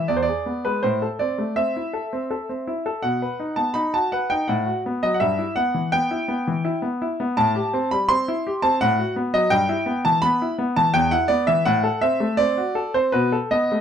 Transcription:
0.08 0.27 E2 medium
0.08 0.16 D5 medium
0.17 0.23 C5 medium
0.22 0.64 D5 medium
0.29 0.48 G#4 medium
0.46 0.65 B3 soft
0.65 0.83 G#3 soft
0.65 0.83 B4 medium
0.83 1.01 A2 medium
0.83 1.05 C5 medium
1.02 1.21 A4 medium
1.19 1.40 C4 medium
1.19 1.57 D5 medium
1.38 1.58 A3 soft
1.56 1.76 C4 medium
1.56 3.00 E5 medium
1.76 1.96 E4 medium
1.93 2.13 A4 medium
2.13 2.32 C4 medium
2.31 2.50 A4 medium
2.49 2.69 C4 soft
2.67 2.87 E4 medium
2.86 3.04 A4 medium
3.02 3.21 B2 medium
3.02 3.58 F#5 medium
3.22 3.41 B4 medium
3.40 3.59 D#4 medium
3.56 3.77 B3 soft
3.56 3.76 A5 medium
3.74 3.95 D#4 medium
3.74 3.94 B5 medium
3.94 4.14 F#4 medium
3.94 4.13 A5 medium
4.12 4.33 B4 medium
4.12 4.31 F#5 medium
4.30 4.50 D#4 medium
4.30 4.49 G5 medium
4.48 4.67 A2 medium
4.48 4.81 F#5 medium
4.66 4.86 F#4 medium
4.86 5.05 B3 medium
5.03 5.22 F#3 medium
5.03 5.15 D#5 medium
5.14 5.22 F#5 medium
5.20 5.39 G2 medium
5.20 5.54 E5 medium
5.39 5.58 E4 medium
5.56 5.77 B3 medium
5.56 5.89 F#5 loud
5.74 5.94 E3 medium
5.92 6.13 B3 medium
5.92 6.79 G5 loud
6.11 6.31 E4 medium
6.28 6.48 B3 medium
6.47 6.67 E3 medium
6.65 6.84 E4 medium
6.82 7.02 B3 medium
7.02 7.21 E4 medium
7.20 7.38 B3 medium
7.37 7.55 A2 medium
7.37 7.88 A5 loud
7.56 7.75 G4 medium
7.73 7.93 C4 medium
7.91 8.11 G3 medium
7.91 8.10 B5 loud
8.09 8.28 C4 medium
8.09 8.63 C6 loud
8.28 8.47 E4 medium
8.47 8.65 G4 medium
8.62 8.81 C4 medium
8.62 8.81 A5 loud
8.81 8.99 A2 medium
8.81 9.13 F#5 loud
8.99 9.18 F#4 medium
9.16 9.35 B3 medium
9.34 9.52 F#3 medium
9.34 9.52 D#5 loud
9.50 9.69 G2 medium
9.50 10.05 G5 loud
9.69 9.88 E4 medium
9.86 10.06 B3 medium
10.05 10.24 E3 medium
10.05 10.23 A5 loud
10.22 10.42 B3 medium
10.22 10.55 B5 loud
10.42 10.61 E4 medium
10.58 10.78 B3 medium
10.76 10.95 E3 medium
10.76 10.95 A5 loud
10.94 11.12 E2 medium
10.94 11.12 G5 loud
11.11 11.31 E4 medium
11.11 11.30 F#5 loud
11.28 11.49 B3 medium
11.28 11.47 D5 loud
11.47 11.66 E3 medium
11.47 11.66 E5 loud
11.65 11.84 A2 medium
11.65 12.02 F#5 loud
11.84 12.03 A4 medium
12.01 12.22 C4 medium
12.01 12.39 E5 loud
12.20 12.40 A3 medium
12.37 12.59 C4 medium
12.37 12.95 D5 loud
12.57 12.77 F#4 medium
12.75 12.96 A4 medium
12.94 13.14 C4 medium
12.94 13.14 C5 medium
13.12 13.33 B2 medium
13.12 13.37 B4 medium
13.32 13.54 A4 medium
13.51 13.73 B3 medium
13.51 13.81 D#5 medium
13.72 13.81 A3 medium

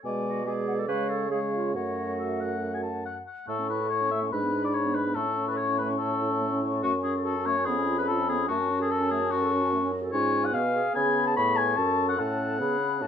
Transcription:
0.04 0.85 B2 soft
0.04 0.44 G#3 medium
0.04 0.44 D5 soft
0.04 0.43 G#5 soft
0.26 0.49 F#4 medium
0.46 0.87 G#3 soft
0.46 0.81 G#4 medium
0.46 0.90 D5 soft
0.46 0.53 G#5 soft
0.68 0.74 F#5 soft
0.79 0.87 A4 medium
0.88 1.77 C#3 soft
0.88 1.29 G#3 soft
0.88 1.11 B4 medium
0.88 1.30 C#5 soft
0.88 1.30 F5 soft
1.09 1.30 A4 medium
1.30 1.76 G#3 soft
1.30 1.41 G#4 soft
1.30 1.74 C#5 soft
1.30 1.73 F5 soft
1.53 1.74 F4 soft
1.74 3.27 F#2 soft
1.74 3.26 A3 soft
1.74 3.02 F#4 medium
1.74 2.13 C#5 soft
1.74 3.23 F#5 soft
2.19 2.42 E5 soft
2.41 2.73 F#5 soft
2.74 2.79 G#5 soft
2.83 3.04 A5 soft
3.05 3.15 F#5 medium
3.27 3.47 F#5 soft
3.47 4.28 A2 soft
3.47 4.33 A3 soft
3.47 3.61 A3 soft
3.47 3.67 A4 medium
3.47 4.34 C#6 soft
3.59 3.71 C#4 soft
3.70 3.82 E4 soft
3.70 3.89 B4 medium
3.81 3.92 A4 soft
3.89 4.02 E4 soft
3.89 4.10 C#5 medium
4.01 4.13 C#4 soft
4.11 4.24 A3 soft
4.11 4.21 E5 medium
4.22 4.31 C#4 soft
4.32 5.14 G#2 soft
4.32 4.44 G#3 soft
4.32 5.15 D4 soft
4.32 4.63 B4 medium
4.32 5.15 B5 soft
4.42 4.54 B3 soft
4.53 4.65 D4 soft
4.63 4.76 E4 soft
4.63 4.75 D5 medium
4.74 4.87 D4 soft
4.74 4.96 C#5 medium
4.85 4.97 B3 soft
4.94 5.08 G#3 soft
4.94 5.16 B4 medium
5.06 5.16 B3 soft
5.15 6.85 A2 soft
5.15 5.29 A3 soft
5.15 8.46 C#4 medium
5.15 5.47 A4 medium
5.15 7.68 C#6 soft
5.27 5.39 C#4 soft
5.37 5.49 E4 soft
5.48 5.60 A4 soft
5.48 5.56 B4 medium
5.56 5.70 E4 soft
5.56 5.77 C#5 medium
5.69 5.80 C#4 soft
5.78 5.91 A3 soft
5.78 5.88 B4 medium
5.90 5.99 C#4 soft
5.98 6.12 E4 soft
5.98 6.60 A4 medium
6.11 6.23 A4 soft
6.21 6.32 E4 soft
6.31 6.43 C#4 soft
6.41 6.54 A3 soft
6.53 6.64 C#4 soft
6.62 6.74 E4 soft
6.73 6.83 A4 soft
6.83 7.69 F#2 medium
6.83 6.95 A3 soft
6.83 6.92 F#4 medium
6.94 7.07 C#4 soft
7.03 7.17 F#4 soft
7.03 7.13 G#4 medium
7.15 7.27 A4 soft
7.25 7.37 F#4 soft
7.25 7.47 A4 medium
7.36 7.48 C#4 soft
7.46 7.59 A3 soft
7.46 7.67 C#5 medium
7.57 7.67 C#4 soft
7.65 8.49 F2 medium
7.65 7.79 B3 medium
7.65 7.97 G#4 medium
7.65 8.48 B5 medium
7.78 7.89 C#4 soft
7.88 8.00 F4 soft
7.98 8.10 G#4 soft
7.98 8.03 B4 medium
8.07 8.21 F4 soft
8.07 8.30 A4 medium
8.19 8.30 C#4 medium
8.28 8.41 B3 soft
8.28 8.48 G#4 medium
8.40 8.49 C#4 medium
8.48 10.10 F#2 medium
8.48 8.61 A3 medium
8.48 10.10 C#4 medium
8.48 8.79 F#4 medium
8.48 9.81 A5 medium
8.59 8.71 C#4 medium
8.70 8.82 F#4 soft
8.80 8.92 G#4 medium
8.80 8.92 A4 soft
8.90 9.01 F#4 soft
8.90 9.12 A4 medium
9.00 9.13 C#4 medium
9.10 9.23 A3 medium
9.10 9.32 G#4 medium
9.22 9.32 C#4 soft
9.31 9.92 F#4 medium
9.31 9.44 F#4 medium
9.42 9.54 A4 soft
9.52 9.64 F#4 soft
9.62 9.74 C#4 soft
9.73 9.84 A3 soft
9.83 9.94 C#4 medium
9.92 10.04 F#4 soft
10.02 10.12 A4 soft
10.12 10.51 G#2 medium
10.12 10.54 C#4 medium
10.12 10.51 F4 medium
10.12 10.46 C#5 medium
10.12 10.97 G#5 soft
10.45 10.56 F#5 medium
10.53 10.84 B2 medium
10.53 10.82 B3 medium
10.53 10.63 G#4 medium
10.53 10.94 F5 medium
10.74 11.35 G#4 medium
10.94 11.36 C#3 medium
10.94 11.79 B3 medium
10.94 11.26 G#5 medium
10.94 11.38 B5 medium
11.27 11.36 A5 medium
11.36 11.77 A2 medium
11.36 11.80 G#4 medium
11.36 11.58 B5 loud
11.36 12.21 C#6 medium
11.57 11.78 G#5 medium
11.76 12.18 F#2 medium
11.76 12.17 C#4 medium
11.76 12.60 A4 medium
11.76 12.08 A5 medium
12.09 12.18 F#5 medium
12.18 12.59 A2 medium
12.18 12.61 C#4 medium
12.18 13.07 F#5 medium
12.18 12.60 A5 soft
12.59 13.03 C#3 medium
12.59 12.79 B3 medium
12.59 13.03 G#4 medium
12.59 13.03 B5 medium
12.80 13.00 C#4 medium
13.01 13.07 A2 medium
13.01 13.07 C#4 medium
13.01 13.07 F#4 soft
13.01 13.07 A5 medium

